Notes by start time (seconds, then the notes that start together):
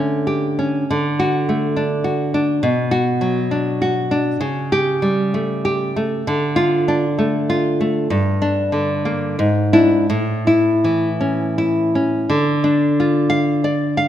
Already playing: D3 A3 C#4
0.27 G4
0.59 C#4
0.91 D3
1.19 F#4
1.49 A3
1.76 D4
2.04 F#4
2.34 D4
2.63 B2
2.91 F#4
3.21 F#3
3.51 D4
3.82 F#4
4.11 D4
4.41 C#3
4.72 G4
5.02 G3
5.34 A3
5.65 G4
5.96 A3
6.27 D3
6.56 F4
6.88 D4
7.19 A3
7.50 F4
7.81 A3
8.10 G2
8.42 D4
8.72 D3
9.05 A#3
9.39 G#2
9.73 D4 E4
10.10 A2
10.47 E4
10.84 E3
11.21 C#4
11.58 E4
11.95 C#4
12.30 D3
12.64 D4
13.00 F4
13.30 F5
13.64 D5
13.97 F5